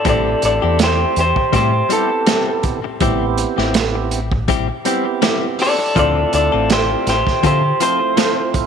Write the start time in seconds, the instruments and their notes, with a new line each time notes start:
0.05 fingered electric bass A1, clean electric guitar G3 C4 E4 G4 A4, tonewheel organ A3 C4 E4 G4, kick, closed hi-hat
0.09 clean electric guitar D5
0.42 fingered electric bass A1, clean electric guitar A4 D5, muted clean electric guitar stroke, closed hi-hat
0.62 fingered electric bass E2, clean electric guitar C4 E4 G4
0.79 clean electric guitar G4, muted clean electric guitar stroke, snare, closed hi-hat
0.84 clean electric guitar C5
0.99 muted clean electric guitar stroke
1.16 fingered electric bass E2, clean electric guitar G4, closed hi-hat
1.20 clean electric guitar C5
1.36 muted clean electric guitar stroke, kick
1.53 fingered electric bass A2, clean electric guitar G3 C4 E4 G4 C5, kick, closed hi-hat
1.73 muted clean electric guitar stroke
1.89 clean electric guitar G3 C4 E4 G4 A4, tonewheel organ B3 C4 E4 G4, closed hi-hat
2.10 muted clean electric guitar stroke
2.27 clean electric guitar G3 C4 E4 G4, snare, closed hi-hat
2.63 muted clean electric guitar stroke, kick, closed hi-hat
2.84 muted clean electric guitar stroke
3.00 fingered electric bass A1, clean electric guitar G3 C4 E4 G4, tonewheel organ B3 C4 E4 G4, kick, closed hi-hat
3.38 muted clean electric guitar stroke, closed hi-hat
3.58 fingered electric bass A1, clean electric guitar C4 E4 G4, snare
3.74 muted clean electric guitar stroke, snare, closed hi-hat
3.95 muted clean electric guitar stroke
4.11 closed hi-hat
4.32 muted clean electric guitar stroke, kick
4.48 clean electric guitar G3 C4 E4 G4, kick, closed hi-hat
4.69 muted clean electric guitar stroke
4.85 clean electric guitar G3 C4 E4 G4, tonewheel organ B3 C4 E4 G4, closed hi-hat
5.05 muted clean electric guitar stroke
5.22 clean electric guitar G3 C4 E4 G4, snare, closed hi-hat
5.59 clean electric guitar A4 D5, muted clean electric guitar stroke, open hi-hat
5.79 muted clean electric guitar stroke
5.96 fingered electric bass D2, clean electric guitar F3 C4 F4 A4 D5, tonewheel organ A3 C4 E4 F4, kick, closed hi-hat
6.33 fingered electric bass D2, clean electric guitar A4 D5, muted clean electric guitar stroke, closed hi-hat
6.52 fingered electric bass A1, clean electric guitar C4 F4 A4
6.70 clean electric guitar G4 C5, muted clean electric guitar stroke, snare, closed hi-hat
6.90 muted clean electric guitar stroke
7.07 fingered electric bass A1, clean electric guitar G4 C5, snare, closed hi-hat
7.27 muted clean electric guitar stroke, kick, snare
7.43 fingered electric bass D3, clean electric guitar F3 C4 F4 G4 A4 C5, kick, closed hi-hat
7.63 muted clean electric guitar stroke
7.80 clean electric guitar F3 C4 F4 A4 C5, tonewheel organ A3 C4 E4 F4, closed hi-hat
8.01 muted clean electric guitar stroke
8.17 clean electric guitar F3 C4 F4 A4, snare, closed hi-hat
8.54 muted clean electric guitar stroke, kick, closed hi-hat